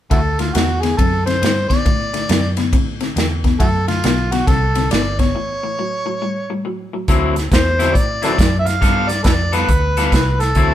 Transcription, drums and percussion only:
0.11 kick, ride
0.39 snare, ride
0.55 snare, ride
0.83 snare, ride
0.99 kick, ride
1.27 snare, ride
1.43 snare, ride
1.70 kick, snare, ride
1.86 kick, ride
2.14 snare, ride
2.29 snare, ride
2.57 snare, ride
2.73 kick, ride
3.01 snare, ride
3.17 snare, ride
3.44 kick, snare, ride
3.60 kick, ride
3.88 snare, ride
4.04 snare, ride
4.32 snare, ride
4.47 kick, snare, ride
4.75 snare, ride
4.91 snare, ride
5.19 kick, snare, ride
7.08 kick, snare, closed hi-hat
7.36 snare, closed hi-hat
7.52 kick, snare, closed hi-hat
7.80 snare, closed hi-hat
7.95 kick, closed hi-hat
8.23 snare, closed hi-hat
8.38 kick, snare, closed hi-hat
8.67 snare, closed hi-hat
8.82 kick, snare, closed hi-hat
9.09 snare, closed hi-hat
9.24 kick, snare, closed hi-hat
9.53 snare, closed hi-hat
9.69 kick, closed hi-hat
9.97 snare, closed hi-hat
10.12 kick, snare, closed hi-hat
10.40 snare, closed hi-hat
10.55 kick, closed hi-hat

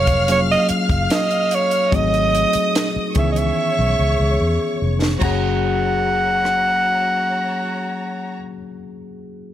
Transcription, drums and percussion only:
0.07 kick, closed hi-hat
0.28 closed hi-hat
0.69 closed hi-hat
0.89 kick, closed hi-hat
1.10 snare, closed hi-hat
1.30 closed hi-hat
1.51 closed hi-hat
1.71 closed hi-hat
1.92 kick, closed hi-hat
2.14 closed hi-hat
2.35 closed hi-hat
2.53 closed hi-hat
2.75 snare, closed hi-hat
3.15 kick, closed hi-hat
3.36 closed hi-hat
5.02 snare
5.21 kick, crash
6.45 cross-stick

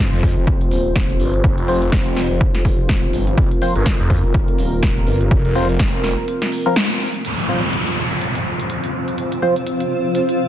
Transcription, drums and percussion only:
0.13 closed hi-hat
0.23 kick, open hi-hat
0.47 kick, closed hi-hat
0.61 closed hi-hat
0.71 open hi-hat
0.96 kick, snare, closed hi-hat
1.10 closed hi-hat
1.20 open hi-hat
1.34 closed hi-hat
1.44 kick, closed hi-hat
1.58 closed hi-hat
1.68 open hi-hat
1.82 closed hi-hat
1.92 kick, snare, closed hi-hat
2.06 closed hi-hat
2.17 snare, open hi-hat
2.41 kick, closed hi-hat
2.55 snare, closed hi-hat
2.65 kick, open hi-hat
2.89 kick, snare, closed hi-hat
3.03 closed hi-hat
3.13 open hi-hat
3.27 closed hi-hat
3.38 kick, closed hi-hat
3.51 closed hi-hat
3.62 open hi-hat
3.76 closed hi-hat
3.86 kick, snare, closed hi-hat
4.00 closed hi-hat
4.10 kick, open hi-hat
4.34 kick, closed hi-hat
4.48 closed hi-hat
4.59 open hi-hat
4.83 kick, snare, closed hi-hat
4.97 closed hi-hat
5.07 open hi-hat
5.21 closed hi-hat
5.31 kick, closed hi-hat
5.45 closed hi-hat
5.55 open hi-hat
5.69 closed hi-hat
5.79 kick, snare, closed hi-hat
5.93 closed hi-hat
6.04 snare, open hi-hat
6.28 closed hi-hat
6.42 snare, closed hi-hat
6.52 open hi-hat
6.76 snare, closed hi-hat
6.90 closed hi-hat
7.00 open hi-hat
7.14 closed hi-hat
7.25 closed hi-hat
7.39 closed hi-hat
7.63 closed hi-hat
7.73 closed hi-hat
7.87 closed hi-hat
8.21 closed hi-hat
8.35 closed hi-hat
8.60 closed hi-hat
8.70 closed hi-hat
8.84 closed hi-hat
9.08 closed hi-hat
9.18 closed hi-hat
9.32 closed hi-hat
9.56 closed hi-hat
9.67 closed hi-hat
9.80 closed hi-hat
10.15 closed hi-hat
10.29 closed hi-hat

